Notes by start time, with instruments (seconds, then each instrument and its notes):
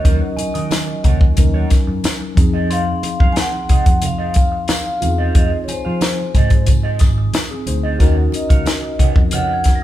Already playing: vibraphone D#5
0.04 picked electric bass D#2, tine electric piano F#3 C#4 D#4 A#4, clean electric guitar F#4 A#4 C#5, kick, closed hi-hat, tambourine
0.21 muted clean electric guitar stroke
0.37 glockenspiel G#5, muted clean electric guitar stroke, muted picked electric bass stroke, closed hi-hat, tambourine, muted conga
0.54 picked electric bass D#3, clean electric guitar F#4 A#4 D#5, closed hi-hat
0.71 muted clean electric guitar stroke, snare, closed hi-hat, tambourine, high conga
0.88 muted clean electric guitar stroke
1.04 picked electric bass D#2, clean electric guitar F#4 A#4 C#5, kick, closed hi-hat, tambourine, low conga
1.21 muted clean electric guitar stroke, kick
1.37 picked electric bass D#2, tine electric piano F#3 C#4 D#4 A#4, muted clean electric guitar stroke, kick, closed hi-hat, tambourine, low conga
1.54 clean electric guitar F#4 A#4 C#5
1.70 muted clean electric guitar stroke, kick, snare, closed hi-hat, tambourine, muted conga
1.87 picked electric bass F#2, muted clean electric guitar stroke
2.04 muted clean electric guitar stroke, snare, closed hi-hat, tambourine, high conga
2.21 muted clean electric guitar stroke
2.35 picked electric bass F2, tine electric piano F3 C4 D#4 G#4, kick, closed hi-hat, tambourine, high conga
2.54 clean electric guitar G#4 C5 D#5
2.70 clean electric guitar G#4 C5 D#5, vibraphone F5, glockenspiel C6, closed hi-hat
2.87 muted clean electric guitar stroke
3.03 muted clean electric guitar stroke, closed hi-hat, tambourine, muted conga
3.20 picked electric bass F#2, clean electric guitar G#4 C5 F5, kick
3.32 vibraphone G#5, closed hi-hat
3.37 vibraphone F#5, muted clean electric guitar stroke, snare, tambourine, high conga
3.54 muted clean electric guitar stroke
3.69 clean electric guitar G#4 C5 D#5, muted picked electric bass stroke, kick, closed hi-hat, tambourine, low conga
3.86 picked electric bass F2, muted clean electric guitar stroke, kick, closed hi-hat
4.02 vibraphone F5, muted clean electric guitar stroke, closed hi-hat, tambourine, low conga
4.18 clean electric guitar G#4 C5 D#5
4.34 muted clean electric guitar stroke, kick, closed hi-hat, tambourine, muted conga
4.52 muted clean electric guitar stroke
4.68 muted clean electric guitar stroke, snare, closed hi-hat, tambourine, high conga
4.72 vibraphone F5
4.85 muted clean electric guitar stroke
5.01 picked electric bass E2, tine electric piano C4 D#4 F4 G#4, closed hi-hat, tambourine, high conga
5.18 clean electric guitar G#4 C5 D#5
5.34 picked electric bass F2, clean electric guitar G#4 C5 D#5, kick, closed hi-hat
5.39 vibraphone D#5
5.52 muted clean electric guitar stroke
5.64 vibraphone C#5, muted conga
5.68 vibraphone C5, glockenspiel G#5, muted clean electric guitar stroke, muted picked electric bass stroke, closed hi-hat, tambourine
5.85 picked electric bass F3, clean electric guitar G#4 C5 F5
6.01 muted clean electric guitar stroke, snare, closed hi-hat, tambourine, high conga
6.18 muted clean electric guitar stroke
6.34 picked electric bass G#2, clean electric guitar G#4 C5 D#5, kick, closed hi-hat, tambourine, muted conga, low conga
6.50 muted clean electric guitar stroke, kick, closed hi-hat
6.67 muted clean electric guitar stroke, kick, closed hi-hat, tambourine, low conga
6.83 clean electric guitar G#4 C5 D#5
6.99 picked electric bass G#1, glockenspiel D#6, muted clean electric guitar stroke, kick, snare, closed hi-hat, tambourine, muted conga
7.18 muted clean electric guitar stroke
7.33 muted clean electric guitar stroke, snare, closed hi-hat, tambourine, high conga
7.51 tine electric piano C4 G#4, muted clean electric guitar stroke
7.66 picked electric bass D2, tine electric piano D#4 C5, closed hi-hat, tambourine, high conga
7.83 clean electric guitar G#4 C5 D#5, tine electric piano D#5
7.99 picked electric bass D#2, tine electric piano C#4 D#4 F#4 A#4, clean electric guitar F#4 C#5 D#5, kick, closed hi-hat, tambourine
8.17 muted clean electric guitar stroke
8.32 vibraphone D#5, muted clean electric guitar stroke, closed hi-hat, tambourine, muted conga
8.49 picked electric bass C#2, clean electric guitar F#4 C#5 F5, kick, closed hi-hat
8.66 muted clean electric guitar stroke, snare, closed hi-hat, tambourine, high conga
8.83 muted clean electric guitar stroke
8.99 clean electric guitar F#4 C#5 D#5, muted picked electric bass stroke, kick, closed hi-hat, low conga
9.16 picked electric bass F2, muted clean electric guitar stroke, kick
9.31 clean electric guitar F#4 C#5 D#5, vibraphone F#5, glockenspiel F6, closed hi-hat, tambourine, low conga
9.53 glockenspiel G#6
9.64 muted clean electric guitar stroke, kick, snare, closed hi-hat, tambourine, muted conga
9.75 glockenspiel A#6